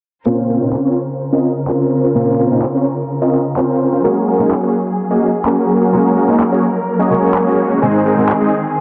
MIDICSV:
0, 0, Header, 1, 5, 480
1, 0, Start_track
1, 0, Key_signature, -5, "minor"
1, 0, Tempo, 472441
1, 265, Time_signature, 4, 2, 24, 8
1, 8946, End_track
2, 0, Start_track
2, 0, Title_t, "Supersaw synth"
2, 0, Program_c, 0, 81
2, 265, Note_on_c, 0, 60, 80
2, 265, Note_on_c, 0, 61, 70
2, 265, Note_on_c, 0, 65, 73
2, 265, Note_on_c, 0, 70, 72
2, 265, Note_on_c, 0, 72, 88
2, 468, Note_off_c, 0, 60, 0
2, 468, Note_off_c, 0, 61, 0
2, 468, Note_off_c, 0, 65, 0
2, 468, Note_off_c, 0, 70, 0
2, 468, Note_off_c, 0, 72, 0
2, 505, Note_on_c, 0, 70, 70
2, 506, Note_on_c, 0, 60, 79
2, 506, Note_on_c, 0, 61, 72
2, 506, Note_on_c, 0, 65, 71
2, 506, Note_on_c, 0, 72, 86
2, 837, Note_off_c, 0, 60, 0
2, 837, Note_off_c, 0, 61, 0
2, 837, Note_off_c, 0, 65, 0
2, 837, Note_off_c, 0, 70, 0
2, 837, Note_off_c, 0, 72, 0
2, 866, Note_on_c, 0, 60, 80
2, 866, Note_on_c, 0, 61, 75
2, 866, Note_on_c, 0, 65, 72
2, 866, Note_on_c, 0, 70, 72
2, 866, Note_on_c, 0, 73, 85
2, 992, Note_off_c, 0, 60, 0
2, 992, Note_off_c, 0, 61, 0
2, 992, Note_off_c, 0, 65, 0
2, 992, Note_off_c, 0, 70, 0
2, 992, Note_off_c, 0, 73, 0
2, 1346, Note_on_c, 0, 60, 86
2, 1346, Note_on_c, 0, 61, 78
2, 1346, Note_on_c, 0, 65, 76
2, 1346, Note_on_c, 0, 70, 80
2, 1346, Note_on_c, 0, 75, 90
2, 1548, Note_off_c, 0, 60, 0
2, 1548, Note_off_c, 0, 61, 0
2, 1548, Note_off_c, 0, 65, 0
2, 1548, Note_off_c, 0, 70, 0
2, 1548, Note_off_c, 0, 75, 0
2, 1706, Note_on_c, 0, 60, 73
2, 1706, Note_on_c, 0, 61, 68
2, 1706, Note_on_c, 0, 65, 69
2, 1706, Note_on_c, 0, 70, 66
2, 1706, Note_on_c, 0, 72, 77
2, 2037, Note_off_c, 0, 60, 0
2, 2037, Note_off_c, 0, 61, 0
2, 2037, Note_off_c, 0, 65, 0
2, 2037, Note_off_c, 0, 70, 0
2, 2037, Note_off_c, 0, 72, 0
2, 2066, Note_on_c, 0, 60, 67
2, 2066, Note_on_c, 0, 61, 63
2, 2066, Note_on_c, 0, 65, 62
2, 2066, Note_on_c, 0, 70, 63
2, 2066, Note_on_c, 0, 72, 73
2, 2157, Note_off_c, 0, 60, 0
2, 2157, Note_off_c, 0, 61, 0
2, 2157, Note_off_c, 0, 65, 0
2, 2157, Note_off_c, 0, 70, 0
2, 2157, Note_off_c, 0, 72, 0
2, 2186, Note_on_c, 0, 60, 78
2, 2186, Note_on_c, 0, 65, 73
2, 2186, Note_on_c, 0, 70, 72
2, 2186, Note_on_c, 0, 72, 90
2, 2187, Note_on_c, 0, 61, 73
2, 2388, Note_off_c, 0, 60, 0
2, 2388, Note_off_c, 0, 61, 0
2, 2388, Note_off_c, 0, 65, 0
2, 2388, Note_off_c, 0, 70, 0
2, 2388, Note_off_c, 0, 72, 0
2, 2426, Note_on_c, 0, 60, 77
2, 2426, Note_on_c, 0, 65, 72
2, 2426, Note_on_c, 0, 70, 72
2, 2426, Note_on_c, 0, 72, 81
2, 2427, Note_on_c, 0, 61, 75
2, 2757, Note_off_c, 0, 60, 0
2, 2757, Note_off_c, 0, 61, 0
2, 2757, Note_off_c, 0, 65, 0
2, 2757, Note_off_c, 0, 70, 0
2, 2757, Note_off_c, 0, 72, 0
2, 2786, Note_on_c, 0, 60, 78
2, 2786, Note_on_c, 0, 61, 74
2, 2786, Note_on_c, 0, 65, 72
2, 2786, Note_on_c, 0, 70, 73
2, 2786, Note_on_c, 0, 73, 90
2, 2912, Note_off_c, 0, 60, 0
2, 2912, Note_off_c, 0, 61, 0
2, 2912, Note_off_c, 0, 65, 0
2, 2912, Note_off_c, 0, 70, 0
2, 2912, Note_off_c, 0, 73, 0
2, 3266, Note_on_c, 0, 60, 82
2, 3266, Note_on_c, 0, 61, 79
2, 3266, Note_on_c, 0, 65, 78
2, 3266, Note_on_c, 0, 70, 81
2, 3266, Note_on_c, 0, 75, 94
2, 3468, Note_off_c, 0, 60, 0
2, 3468, Note_off_c, 0, 61, 0
2, 3468, Note_off_c, 0, 65, 0
2, 3468, Note_off_c, 0, 70, 0
2, 3468, Note_off_c, 0, 75, 0
2, 3626, Note_on_c, 0, 60, 76
2, 3626, Note_on_c, 0, 61, 69
2, 3626, Note_on_c, 0, 70, 69
2, 3627, Note_on_c, 0, 65, 65
2, 3627, Note_on_c, 0, 72, 83
2, 3957, Note_off_c, 0, 60, 0
2, 3957, Note_off_c, 0, 61, 0
2, 3957, Note_off_c, 0, 65, 0
2, 3957, Note_off_c, 0, 70, 0
2, 3957, Note_off_c, 0, 72, 0
2, 3986, Note_on_c, 0, 60, 67
2, 3986, Note_on_c, 0, 61, 63
2, 3986, Note_on_c, 0, 65, 60
2, 3986, Note_on_c, 0, 70, 65
2, 3986, Note_on_c, 0, 72, 73
2, 4077, Note_off_c, 0, 60, 0
2, 4077, Note_off_c, 0, 61, 0
2, 4077, Note_off_c, 0, 65, 0
2, 4077, Note_off_c, 0, 70, 0
2, 4077, Note_off_c, 0, 72, 0
2, 4107, Note_on_c, 0, 58, 80
2, 4107, Note_on_c, 0, 61, 75
2, 4107, Note_on_c, 0, 66, 75
2, 4107, Note_on_c, 0, 68, 75
2, 4107, Note_on_c, 0, 70, 91
2, 4308, Note_off_c, 0, 58, 0
2, 4308, Note_off_c, 0, 70, 0
2, 4309, Note_off_c, 0, 61, 0
2, 4309, Note_off_c, 0, 66, 0
2, 4309, Note_off_c, 0, 68, 0
2, 4346, Note_on_c, 0, 61, 70
2, 4346, Note_on_c, 0, 66, 70
2, 4346, Note_on_c, 0, 68, 72
2, 4346, Note_on_c, 0, 70, 84
2, 4347, Note_on_c, 0, 58, 77
2, 4677, Note_off_c, 0, 58, 0
2, 4677, Note_off_c, 0, 61, 0
2, 4677, Note_off_c, 0, 66, 0
2, 4677, Note_off_c, 0, 68, 0
2, 4677, Note_off_c, 0, 70, 0
2, 4706, Note_on_c, 0, 58, 80
2, 4706, Note_on_c, 0, 61, 74
2, 4706, Note_on_c, 0, 66, 76
2, 4706, Note_on_c, 0, 68, 75
2, 4706, Note_on_c, 0, 73, 88
2, 4832, Note_off_c, 0, 58, 0
2, 4832, Note_off_c, 0, 61, 0
2, 4832, Note_off_c, 0, 66, 0
2, 4832, Note_off_c, 0, 68, 0
2, 4832, Note_off_c, 0, 73, 0
2, 5186, Note_on_c, 0, 58, 87
2, 5186, Note_on_c, 0, 61, 79
2, 5186, Note_on_c, 0, 66, 78
2, 5186, Note_on_c, 0, 68, 77
2, 5186, Note_on_c, 0, 75, 96
2, 5388, Note_off_c, 0, 58, 0
2, 5388, Note_off_c, 0, 61, 0
2, 5388, Note_off_c, 0, 66, 0
2, 5388, Note_off_c, 0, 68, 0
2, 5388, Note_off_c, 0, 75, 0
2, 5546, Note_on_c, 0, 58, 77
2, 5546, Note_on_c, 0, 61, 71
2, 5546, Note_on_c, 0, 66, 68
2, 5546, Note_on_c, 0, 68, 70
2, 5546, Note_on_c, 0, 70, 80
2, 5877, Note_off_c, 0, 58, 0
2, 5877, Note_off_c, 0, 61, 0
2, 5877, Note_off_c, 0, 66, 0
2, 5877, Note_off_c, 0, 68, 0
2, 5877, Note_off_c, 0, 70, 0
2, 5906, Note_on_c, 0, 58, 72
2, 5906, Note_on_c, 0, 61, 64
2, 5906, Note_on_c, 0, 66, 65
2, 5906, Note_on_c, 0, 68, 63
2, 5906, Note_on_c, 0, 70, 78
2, 5997, Note_off_c, 0, 58, 0
2, 5997, Note_off_c, 0, 61, 0
2, 5997, Note_off_c, 0, 66, 0
2, 5997, Note_off_c, 0, 68, 0
2, 5997, Note_off_c, 0, 70, 0
2, 6026, Note_on_c, 0, 58, 81
2, 6026, Note_on_c, 0, 61, 77
2, 6026, Note_on_c, 0, 66, 76
2, 6026, Note_on_c, 0, 68, 76
2, 6026, Note_on_c, 0, 70, 86
2, 6228, Note_off_c, 0, 58, 0
2, 6228, Note_off_c, 0, 61, 0
2, 6228, Note_off_c, 0, 66, 0
2, 6228, Note_off_c, 0, 68, 0
2, 6228, Note_off_c, 0, 70, 0
2, 6265, Note_on_c, 0, 61, 73
2, 6265, Note_on_c, 0, 68, 73
2, 6265, Note_on_c, 0, 70, 88
2, 6266, Note_on_c, 0, 58, 75
2, 6266, Note_on_c, 0, 66, 69
2, 6597, Note_off_c, 0, 58, 0
2, 6597, Note_off_c, 0, 61, 0
2, 6597, Note_off_c, 0, 66, 0
2, 6597, Note_off_c, 0, 68, 0
2, 6597, Note_off_c, 0, 70, 0
2, 6626, Note_on_c, 0, 58, 81
2, 6626, Note_on_c, 0, 61, 73
2, 6626, Note_on_c, 0, 66, 75
2, 6626, Note_on_c, 0, 68, 72
2, 6626, Note_on_c, 0, 73, 90
2, 6752, Note_off_c, 0, 58, 0
2, 6752, Note_off_c, 0, 61, 0
2, 6752, Note_off_c, 0, 66, 0
2, 6752, Note_off_c, 0, 68, 0
2, 6752, Note_off_c, 0, 73, 0
2, 7105, Note_on_c, 0, 61, 77
2, 7105, Note_on_c, 0, 68, 81
2, 7106, Note_on_c, 0, 58, 81
2, 7106, Note_on_c, 0, 66, 78
2, 7106, Note_on_c, 0, 75, 100
2, 7202, Note_off_c, 0, 58, 0
2, 7202, Note_off_c, 0, 61, 0
2, 7202, Note_off_c, 0, 66, 0
2, 7202, Note_off_c, 0, 68, 0
2, 7202, Note_off_c, 0, 75, 0
2, 7226, Note_on_c, 0, 58, 88
2, 7226, Note_on_c, 0, 61, 75
2, 7226, Note_on_c, 0, 66, 81
2, 7226, Note_on_c, 0, 68, 81
2, 7226, Note_on_c, 0, 73, 97
2, 7557, Note_off_c, 0, 58, 0
2, 7557, Note_off_c, 0, 61, 0
2, 7557, Note_off_c, 0, 66, 0
2, 7557, Note_off_c, 0, 68, 0
2, 7557, Note_off_c, 0, 73, 0
2, 7586, Note_on_c, 0, 58, 92
2, 7586, Note_on_c, 0, 61, 86
2, 7586, Note_on_c, 0, 66, 87
2, 7586, Note_on_c, 0, 68, 87
2, 7586, Note_on_c, 0, 73, 105
2, 7917, Note_off_c, 0, 58, 0
2, 7917, Note_off_c, 0, 61, 0
2, 7917, Note_off_c, 0, 66, 0
2, 7917, Note_off_c, 0, 68, 0
2, 7917, Note_off_c, 0, 73, 0
2, 7946, Note_on_c, 0, 56, 80
2, 7946, Note_on_c, 0, 60, 71
2, 7946, Note_on_c, 0, 63, 77
2, 7946, Note_on_c, 0, 68, 75
2, 7946, Note_on_c, 0, 72, 91
2, 8148, Note_off_c, 0, 56, 0
2, 8148, Note_off_c, 0, 60, 0
2, 8148, Note_off_c, 0, 63, 0
2, 8148, Note_off_c, 0, 68, 0
2, 8148, Note_off_c, 0, 72, 0
2, 8186, Note_on_c, 0, 56, 78
2, 8186, Note_on_c, 0, 60, 72
2, 8186, Note_on_c, 0, 63, 71
2, 8186, Note_on_c, 0, 68, 73
2, 8186, Note_on_c, 0, 70, 85
2, 8517, Note_off_c, 0, 56, 0
2, 8517, Note_off_c, 0, 60, 0
2, 8517, Note_off_c, 0, 63, 0
2, 8517, Note_off_c, 0, 68, 0
2, 8517, Note_off_c, 0, 70, 0
2, 8545, Note_on_c, 0, 60, 70
2, 8545, Note_on_c, 0, 68, 75
2, 8546, Note_on_c, 0, 56, 82
2, 8546, Note_on_c, 0, 63, 78
2, 8546, Note_on_c, 0, 75, 90
2, 8672, Note_off_c, 0, 56, 0
2, 8672, Note_off_c, 0, 60, 0
2, 8672, Note_off_c, 0, 63, 0
2, 8672, Note_off_c, 0, 68, 0
2, 8672, Note_off_c, 0, 75, 0
2, 8946, End_track
3, 0, Start_track
3, 0, Title_t, "String section"
3, 0, Program_c, 1, 48
3, 266, Note_on_c, 1, 49, 67
3, 266, Note_on_c, 1, 70, 77
3, 266, Note_on_c, 1, 72, 66
3, 2167, Note_off_c, 1, 72, 0
3, 4067, Note_off_c, 1, 49, 0
3, 4068, Note_off_c, 1, 70, 0
3, 4106, Note_on_c, 1, 54, 69
3, 4106, Note_on_c, 1, 58, 66
3, 4107, Note_on_c, 1, 68, 75
3, 6007, Note_off_c, 1, 68, 0
3, 6025, Note_on_c, 1, 70, 79
3, 7908, Note_off_c, 1, 54, 0
3, 7908, Note_off_c, 1, 58, 0
3, 7926, Note_off_c, 1, 70, 0
3, 7946, Note_on_c, 1, 51, 71
3, 7946, Note_on_c, 1, 60, 67
3, 7946, Note_on_c, 1, 68, 79
3, 8946, Note_off_c, 1, 51, 0
3, 8946, Note_off_c, 1, 60, 0
3, 8946, Note_off_c, 1, 68, 0
3, 8946, End_track
4, 0, Start_track
4, 0, Title_t, "Steel-string acoustic guitar"
4, 0, Program_c, 2, 25
4, 258, Note_on_c, 2, 46, 75
4, 263, Note_on_c, 2, 58, 71
4, 267, Note_on_c, 2, 60, 70
4, 268, Note_on_c, 2, 61, 71
4, 271, Note_on_c, 2, 65, 89
4, 593, Note_off_c, 2, 46, 0
4, 595, Note_off_c, 2, 58, 0
4, 596, Note_off_c, 2, 60, 0
4, 598, Note_off_c, 2, 61, 0
4, 600, Note_off_c, 2, 65, 0
4, 618, Note_on_c, 2, 46, 74
4, 625, Note_on_c, 2, 58, 67
4, 626, Note_on_c, 2, 60, 65
4, 628, Note_on_c, 2, 61, 64
4, 631, Note_on_c, 2, 63, 80
4, 752, Note_off_c, 2, 46, 0
4, 753, Note_off_c, 2, 58, 0
4, 755, Note_off_c, 2, 60, 0
4, 756, Note_off_c, 2, 61, 0
4, 758, Note_off_c, 2, 63, 0
4, 2177, Note_on_c, 2, 46, 80
4, 2187, Note_on_c, 2, 58, 73
4, 2187, Note_on_c, 2, 60, 74
4, 2188, Note_on_c, 2, 61, 76
4, 2192, Note_on_c, 2, 65, 87
4, 2514, Note_off_c, 2, 46, 0
4, 2515, Note_off_c, 2, 58, 0
4, 2517, Note_off_c, 2, 60, 0
4, 2518, Note_off_c, 2, 61, 0
4, 2520, Note_off_c, 2, 65, 0
4, 2538, Note_on_c, 2, 46, 75
4, 2545, Note_on_c, 2, 58, 68
4, 2546, Note_on_c, 2, 60, 63
4, 2548, Note_on_c, 2, 61, 67
4, 2552, Note_on_c, 2, 63, 79
4, 2672, Note_off_c, 2, 46, 0
4, 2673, Note_off_c, 2, 58, 0
4, 2675, Note_off_c, 2, 60, 0
4, 2676, Note_off_c, 2, 61, 0
4, 2678, Note_off_c, 2, 63, 0
4, 4100, Note_on_c, 2, 56, 83
4, 4104, Note_on_c, 2, 58, 73
4, 4110, Note_on_c, 2, 61, 69
4, 4112, Note_on_c, 2, 66, 87
4, 4434, Note_off_c, 2, 56, 0
4, 4436, Note_off_c, 2, 58, 0
4, 4438, Note_off_c, 2, 61, 0
4, 4440, Note_off_c, 2, 66, 0
4, 4460, Note_on_c, 2, 56, 71
4, 4463, Note_on_c, 2, 58, 66
4, 4470, Note_on_c, 2, 61, 66
4, 4472, Note_on_c, 2, 63, 81
4, 4592, Note_off_c, 2, 56, 0
4, 4594, Note_off_c, 2, 58, 0
4, 4596, Note_off_c, 2, 61, 0
4, 4598, Note_off_c, 2, 63, 0
4, 6019, Note_on_c, 2, 56, 80
4, 6023, Note_on_c, 2, 58, 69
4, 6026, Note_on_c, 2, 61, 73
4, 6035, Note_on_c, 2, 66, 86
4, 6354, Note_off_c, 2, 56, 0
4, 6356, Note_off_c, 2, 58, 0
4, 6358, Note_off_c, 2, 61, 0
4, 6360, Note_off_c, 2, 66, 0
4, 6379, Note_on_c, 2, 56, 72
4, 6384, Note_on_c, 2, 58, 70
4, 6389, Note_on_c, 2, 61, 64
4, 6392, Note_on_c, 2, 63, 83
4, 6512, Note_off_c, 2, 56, 0
4, 6514, Note_off_c, 2, 58, 0
4, 6516, Note_off_c, 2, 61, 0
4, 6518, Note_off_c, 2, 63, 0
4, 7214, Note_on_c, 2, 56, 65
4, 7222, Note_on_c, 2, 58, 59
4, 7230, Note_on_c, 2, 61, 60
4, 7238, Note_on_c, 2, 70, 75
4, 7911, Note_off_c, 2, 56, 0
4, 7915, Note_off_c, 2, 58, 0
4, 7919, Note_off_c, 2, 61, 0
4, 7923, Note_off_c, 2, 70, 0
4, 7939, Note_on_c, 2, 44, 82
4, 7944, Note_on_c, 2, 56, 69
4, 7944, Note_on_c, 2, 60, 71
4, 7951, Note_on_c, 2, 63, 70
4, 7952, Note_on_c, 2, 68, 89
4, 8274, Note_off_c, 2, 44, 0
4, 8275, Note_off_c, 2, 56, 0
4, 8277, Note_off_c, 2, 60, 0
4, 8278, Note_off_c, 2, 63, 0
4, 8280, Note_off_c, 2, 68, 0
4, 8298, Note_on_c, 2, 44, 76
4, 8305, Note_on_c, 2, 60, 67
4, 8307, Note_on_c, 2, 56, 66
4, 8310, Note_on_c, 2, 63, 69
4, 8312, Note_on_c, 2, 66, 80
4, 8432, Note_off_c, 2, 44, 0
4, 8434, Note_off_c, 2, 56, 0
4, 8435, Note_off_c, 2, 60, 0
4, 8437, Note_off_c, 2, 63, 0
4, 8438, Note_off_c, 2, 66, 0
4, 8946, End_track
5, 0, Start_track
5, 0, Title_t, "Drums"
5, 745, Note_on_c, 9, 39, 105
5, 847, Note_off_c, 9, 39, 0
5, 1705, Note_on_c, 9, 39, 112
5, 1807, Note_off_c, 9, 39, 0
5, 2665, Note_on_c, 9, 39, 114
5, 2767, Note_off_c, 9, 39, 0
5, 3625, Note_on_c, 9, 39, 113
5, 3727, Note_off_c, 9, 39, 0
5, 4585, Note_on_c, 9, 39, 110
5, 4687, Note_off_c, 9, 39, 0
5, 5545, Note_on_c, 9, 39, 114
5, 5647, Note_off_c, 9, 39, 0
5, 6505, Note_on_c, 9, 39, 109
5, 6607, Note_off_c, 9, 39, 0
5, 7465, Note_on_c, 9, 39, 111
5, 7567, Note_off_c, 9, 39, 0
5, 8425, Note_on_c, 9, 39, 105
5, 8527, Note_off_c, 9, 39, 0
5, 8946, End_track
0, 0, End_of_file